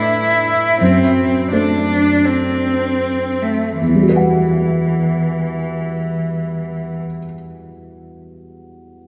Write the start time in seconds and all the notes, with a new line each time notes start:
Already playing: A2 A3 E4 A4 B4
0.81 F#2 C4
1.52 A3 D4 A4 C5
2.25 C4
3.42 A3
3.80 E2 E3
3.88 E3
3.95 G3
4.03 F#4
4.09 B4
4.16 F#5